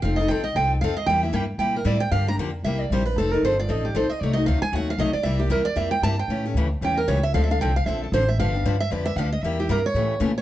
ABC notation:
X:1
M:4/4
L:1/8
Q:"Swing" 1/4=230
K:Cmix
V:1 name="Steel-string acoustic guitar"
f _e g e g z f e | g e g z g B d g | f b z2 e d c =B | A B c d _e G c e |
d ^d f _a ^f =f d =d | e G B d e g a g- | g z3 g B ^c e | (3f e f g f e A c e |
f3 e d e f _e | e G B _d3 z ^c |]
V:2 name="Steel-string acoustic guitar"
[F,C_EA] [CEA] [F,CEA] z [F,CEA] z [F,CEA] z | [C,G,B,EG] [B,EG] [C,G,B,EG] z [C,G,B,EG] z [C,G,B,EG] z | [D,F,B,DG] [B,DG] [D,F,B,DG] z [C,G,B,EG] z [C,G,B,EG] z | [F,C_EA] [CEA] [F,CEA] z [F,CEA] z [F,CEA] z |
[C,^F,A,^D^F] [A,DF] [C,F,A,DF] z [C,F,A,DF] z [C,F,A,DF] z | [C,G,B,EG] [B,EG] [C,G,B,EG] z [C,G,B,EG] z [C,G,B,EG] z | [^C,E,A,^CG] [A,CG] [C,E,A,CG] z [C,E,A,CG] z [C,E,A,CG] z | [D,F,CDA] [CDA] [D,F,CDA] z [D,F,CDA] z [D,F,CDA] z |
[D,F,=B,DG] [B,DG] [D,F,B,DG] z [D,F,B,DG] z [D,F,B,DG] z | [C,G,B,EG] [B,EG] [C,G,B,EG] z [^C,E,A,^CG] z [C,E,A,CG] z |]
V:3 name="Upright bass" clef=bass
F,,,2 B,,,2 C,,2 F,,2 | E,,2 G,,2 B,,2 A,,2 | G,,2 F,,2 C,,2 B,,,2 | F,,,2 G,,,2 A,,,2 B,,, z |
C,,2 D,, z ^D,,2 =B,,, z | C,,2 E,,2 F,,2 G,,2 | A,,2 D,,2 E,,2 ^C,,2 | D,,2 C,,2 B,,,2 A,,,2 |
G,,,2 G,,2 F,,2 D,,2 | E,,2 G,,2 A,,2 B,,2 |]